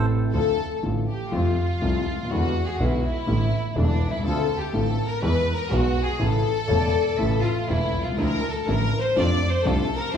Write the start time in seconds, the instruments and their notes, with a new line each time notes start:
Already playing: grand piano A1 A2 C3 A3 C4 E4, double bass A1, string section C4 A4, clarinet A4
0.33 double bass D2, grand piano D2 D3 F3 A3 F4, violin section A4
0.83 grand piano A1 A2 D3 F3 A3 F4, double bass A1
1.08 violin section G4
1.32 grand piano F2 C3 F3 A3 F4, double bass F2, violin section F4
1.82 double bass C2, grand piano C2 C3 F3 A3 F4
2.06 double bass D2
2.13 grand piano C#2
2.19 grand piano D2
2.25 grand piano D#2
2.31 double bass E2, grand piano E2 D3 E3 G#3 B3 E4, violin section F#4
2.67 violin section G#4
2.76 double bass B1, grand piano B1 B2 D3 G#3 B3, violin section F#4
2.80 grand piano E4
2.86 violin section E4
2.95 violin section F#4
3.04 violin section E4
3.27 double bass A1, grand piano A1 A2 D3 E3 A3 E4
3.70 violin section E4
3.75 grand piano E1 E2 D3 E3 A3 E4, double bass E1, violin section D4
4.01 double bass C2
4.06 grand piano B1, violin section E4
4.12 grand piano C2
4.18 grand piano C#2
4.24 grand piano D2 D3 A3 C4 F4, double bass D2, violin section A4
4.59 violin section G4
4.73 grand piano A1 A2 D3 A3 C4 F4, double bass A1, violin section A4
5.08 violin section A#4
5.22 double bass E2, grand piano E2 E3 G#3 B3 G#4, violin section B4
5.55 violin section A#4
5.70 grand piano B1 B2 E3 G#3 B3 G#4, double bass B1, violin section F#4
6.04 violin section G#4
6.19 grand piano A1 A2 C#3 E3 A3 E4, double bass A1, violin section A4
6.68 double bass E1, grand piano E1 E2 C#3 E3 A3 E4, clarinet C#5
6.80 clarinet D5
7.18 double bass A1, grand piano A1 A2 C#3 E3 A3 E4, clarinet E5
7.43 violin section F4
7.68 grand piano E1 E2 C#3 E3 A3 E4, double bass E1, violin section E4
7.94 double bass C2
8.00 grand piano B1, violin section F4
8.05 grand piano C2
8.12 grand piano C#2
8.18 grand piano D2 D3 F3 A3 E4, double bass D2, string section F3 D4 E4, violin section A#4
8.51 violin section A4
8.67 double bass A1, grand piano A1 A2 D3 F3 A3 E4, string section F3 D4 E4, violin section A#4
9.00 violin section C5
9.16 grand piano F2 C3 F3 A3 D4, double bass F2, string section A3 D4 F4, violin section D5
9.49 violin section C5
9.65 grand piano C2 C3 F3 A3 D4, double bass C2, string section A3 D4 F4, violin section A4
9.98 violin section A#4
10.14 grand piano A#2 C3 F3 A#3, string section A#3